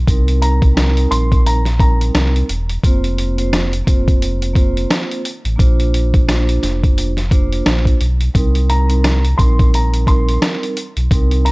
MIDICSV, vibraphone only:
0, 0, Header, 1, 2, 480
1, 0, Start_track
1, 0, Key_signature, -3, "minor"
1, 0, Tempo, 689655
1, 53, Time_signature, 4, 2, 24, 8
1, 8017, End_track
2, 0, Start_track
2, 0, Title_t, "Vibraphone"
2, 0, Program_c, 0, 11
2, 52, Note_on_c, 0, 55, 91
2, 59, Note_on_c, 0, 60, 87
2, 65, Note_on_c, 0, 63, 84
2, 72, Note_on_c, 0, 70, 110
2, 500, Note_off_c, 0, 55, 0
2, 503, Note_off_c, 0, 60, 0
2, 507, Note_off_c, 0, 63, 0
2, 510, Note_off_c, 0, 70, 0
2, 520, Note_on_c, 0, 55, 94
2, 526, Note_on_c, 0, 60, 92
2, 533, Note_on_c, 0, 63, 91
2, 540, Note_on_c, 0, 70, 109
2, 1090, Note_off_c, 0, 55, 0
2, 1093, Note_off_c, 0, 60, 0
2, 1097, Note_off_c, 0, 63, 0
2, 1100, Note_off_c, 0, 70, 0
2, 1235, Note_on_c, 0, 55, 96
2, 1242, Note_on_c, 0, 60, 87
2, 1249, Note_on_c, 0, 63, 85
2, 1256, Note_on_c, 0, 70, 104
2, 1692, Note_off_c, 0, 55, 0
2, 1695, Note_off_c, 0, 60, 0
2, 1699, Note_off_c, 0, 63, 0
2, 1702, Note_off_c, 0, 70, 0
2, 1974, Note_on_c, 0, 58, 101
2, 1980, Note_on_c, 0, 60, 94
2, 1987, Note_on_c, 0, 65, 93
2, 1993, Note_on_c, 0, 72, 105
2, 2319, Note_off_c, 0, 58, 0
2, 2322, Note_off_c, 0, 60, 0
2, 2326, Note_off_c, 0, 65, 0
2, 2329, Note_off_c, 0, 72, 0
2, 2342, Note_on_c, 0, 58, 89
2, 2348, Note_on_c, 0, 60, 83
2, 2355, Note_on_c, 0, 65, 84
2, 2362, Note_on_c, 0, 72, 103
2, 2565, Note_off_c, 0, 58, 0
2, 2568, Note_off_c, 0, 60, 0
2, 2571, Note_off_c, 0, 65, 0
2, 2575, Note_off_c, 0, 72, 0
2, 2676, Note_on_c, 0, 58, 92
2, 2684, Note_on_c, 0, 60, 89
2, 2690, Note_on_c, 0, 65, 85
2, 2696, Note_on_c, 0, 72, 105
2, 3132, Note_off_c, 0, 58, 0
2, 3136, Note_off_c, 0, 60, 0
2, 3139, Note_off_c, 0, 65, 0
2, 3142, Note_off_c, 0, 72, 0
2, 3158, Note_on_c, 0, 58, 100
2, 3165, Note_on_c, 0, 60, 81
2, 3171, Note_on_c, 0, 65, 91
2, 3177, Note_on_c, 0, 72, 109
2, 3613, Note_off_c, 0, 58, 0
2, 3616, Note_off_c, 0, 60, 0
2, 3620, Note_off_c, 0, 65, 0
2, 3623, Note_off_c, 0, 72, 0
2, 3872, Note_on_c, 0, 58, 100
2, 3878, Note_on_c, 0, 62, 87
2, 3885, Note_on_c, 0, 65, 90
2, 3891, Note_on_c, 0, 72, 111
2, 4330, Note_off_c, 0, 58, 0
2, 4333, Note_off_c, 0, 62, 0
2, 4337, Note_off_c, 0, 65, 0
2, 4340, Note_off_c, 0, 72, 0
2, 4368, Note_on_c, 0, 58, 93
2, 4375, Note_on_c, 0, 62, 89
2, 4381, Note_on_c, 0, 65, 93
2, 4388, Note_on_c, 0, 72, 97
2, 4934, Note_off_c, 0, 58, 0
2, 4937, Note_off_c, 0, 62, 0
2, 4941, Note_off_c, 0, 65, 0
2, 4944, Note_off_c, 0, 72, 0
2, 5080, Note_on_c, 0, 58, 98
2, 5087, Note_on_c, 0, 62, 85
2, 5094, Note_on_c, 0, 65, 85
2, 5101, Note_on_c, 0, 72, 113
2, 5534, Note_off_c, 0, 58, 0
2, 5538, Note_off_c, 0, 62, 0
2, 5541, Note_off_c, 0, 65, 0
2, 5544, Note_off_c, 0, 72, 0
2, 5806, Note_on_c, 0, 55, 99
2, 5813, Note_on_c, 0, 60, 86
2, 5819, Note_on_c, 0, 63, 86
2, 5826, Note_on_c, 0, 70, 110
2, 6155, Note_off_c, 0, 55, 0
2, 6158, Note_off_c, 0, 60, 0
2, 6162, Note_off_c, 0, 63, 0
2, 6165, Note_off_c, 0, 70, 0
2, 6176, Note_on_c, 0, 55, 105
2, 6182, Note_on_c, 0, 60, 91
2, 6189, Note_on_c, 0, 63, 85
2, 6196, Note_on_c, 0, 70, 107
2, 6402, Note_off_c, 0, 55, 0
2, 6405, Note_off_c, 0, 60, 0
2, 6408, Note_off_c, 0, 63, 0
2, 6412, Note_off_c, 0, 70, 0
2, 6519, Note_on_c, 0, 55, 93
2, 6527, Note_on_c, 0, 60, 87
2, 6533, Note_on_c, 0, 63, 87
2, 6540, Note_on_c, 0, 70, 104
2, 6974, Note_off_c, 0, 55, 0
2, 6977, Note_off_c, 0, 60, 0
2, 6981, Note_off_c, 0, 63, 0
2, 6984, Note_off_c, 0, 70, 0
2, 7004, Note_on_c, 0, 55, 94
2, 7010, Note_on_c, 0, 60, 80
2, 7017, Note_on_c, 0, 63, 85
2, 7023, Note_on_c, 0, 70, 119
2, 7456, Note_off_c, 0, 55, 0
2, 7459, Note_off_c, 0, 60, 0
2, 7463, Note_off_c, 0, 63, 0
2, 7466, Note_off_c, 0, 70, 0
2, 7733, Note_on_c, 0, 55, 93
2, 7740, Note_on_c, 0, 60, 88
2, 7747, Note_on_c, 0, 63, 83
2, 7754, Note_on_c, 0, 70, 105
2, 8017, Note_off_c, 0, 55, 0
2, 8017, Note_off_c, 0, 60, 0
2, 8017, Note_off_c, 0, 63, 0
2, 8017, Note_off_c, 0, 70, 0
2, 8017, End_track
0, 0, End_of_file